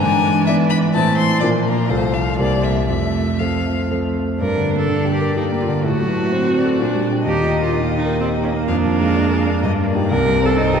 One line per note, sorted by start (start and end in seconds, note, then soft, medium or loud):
0.00 0.47 G#2 medium
0.00 1.42 E3 medium
0.00 0.94 D4 medium
0.00 0.46 G#5 medium
0.47 0.91 B3 soft
0.47 0.91 E4 soft
0.47 0.92 D5 soft
0.47 0.55 E5 medium
0.70 0.78 B5 medium
0.94 1.41 A2 medium
0.94 1.38 A3 soft
0.94 1.45 C4 medium
0.94 1.38 E4 soft
0.94 1.39 C5 soft
0.94 1.17 A5 medium
1.18 1.40 C6 medium
1.40 1.88 A#2 medium
1.40 1.86 F3 soft
1.40 2.42 F3 medium
1.40 1.93 A#3 medium
1.40 1.86 D4 soft
1.40 1.86 A#4 soft
1.40 1.48 D5 medium
1.66 1.91 A#4 medium
1.89 2.37 C2 medium
1.89 2.34 F3 soft
1.89 2.42 A3 soft
1.89 2.35 F4 soft
1.89 2.35 A4 soft
1.89 2.15 C5 medium
2.13 2.38 F5 medium
2.38 2.87 C2 soft
2.38 2.85 G3 soft
2.38 2.89 G3 soft
2.38 2.89 A#3 soft
2.38 2.85 C4 soft
2.38 2.85 A#4 soft
2.38 2.66 D5 medium
2.64 2.88 E5 medium
2.88 3.38 F2 soft
2.88 4.17 F3 soft
2.88 4.17 A3 medium
2.88 3.41 E5 medium
3.39 3.86 F3 soft
3.39 3.86 C4 soft
3.39 3.86 A4 soft
3.39 3.90 F5 soft
3.90 4.36 F3 soft
3.90 4.36 C4 soft
3.90 4.36 A4 soft
4.40 5.81 G2 soft
4.40 5.33 D4 medium
4.40 4.74 A#4 medium
4.40 4.85 D5 soft
4.57 4.82 D3 soft
4.72 4.98 A#3 soft
4.78 5.13 A4 medium
4.89 5.14 D3 soft
4.89 5.85 D5 soft
5.05 5.30 G4 soft
5.13 5.36 G4 medium
5.21 5.46 A#4 soft
5.36 5.85 A#3 soft
5.36 5.45 D#4 medium
5.36 5.62 G4 soft
5.52 5.78 A#3 soft
5.61 5.69 F4 soft
5.68 5.84 D3 soft
5.83 6.77 A2 soft
5.83 6.34 A3 medium
5.83 7.01 F#4 medium
5.83 6.10 A4 soft
6.00 6.26 F#3 soft
6.08 6.34 B4 soft
6.17 6.42 A3 soft
6.32 6.58 C4 soft
6.32 6.80 C4 medium
6.32 6.58 C5 soft
6.48 6.73 F#4 soft
6.57 7.26 D5 soft
6.64 6.80 A4 soft
6.79 7.25 A#2 soft
6.79 7.26 D4 medium
6.95 7.20 G3 soft
7.11 7.25 D4 soft
7.11 7.25 G4 soft
7.26 8.63 D#2 soft
7.26 7.77 D#4 medium
7.26 7.59 G4 medium
7.26 8.65 D#5 soft
7.42 7.68 A#2 soft
7.58 7.83 A#3 soft
7.58 7.96 F4 medium
7.74 10.12 A#3 medium
7.74 7.99 D#4 soft
7.90 8.15 G4 soft
7.98 8.19 D#4 medium
8.05 8.30 A#4 soft
8.20 8.28 C4 medium
8.20 8.46 G4 soft
8.38 8.62 D#4 soft
8.44 8.52 C#4 soft
8.52 8.68 A#3 soft
8.67 9.60 F2 medium
8.67 9.83 D4 medium
8.67 8.76 F5 soft
8.84 9.09 F3 soft
8.91 9.61 F5 soft
9.01 9.25 G#3 soft
9.16 9.41 D4 soft
9.32 9.57 G#4 soft
9.47 9.63 D4 soft
9.63 10.08 G2 medium
9.63 9.71 D#5 medium
9.81 10.04 A#3 soft
9.87 10.56 D5 soft
9.95 10.09 D#4 soft
9.95 10.09 G4 soft
10.10 10.80 C2 medium
10.10 10.59 C4 medium
10.10 10.47 A#4 medium
10.26 10.51 G2 soft
10.42 10.67 C4 soft
10.46 10.80 A4 medium
10.57 10.80 D#4 soft
10.57 10.80 D#4 medium
10.57 10.80 C5 medium
10.73 10.80 G4 medium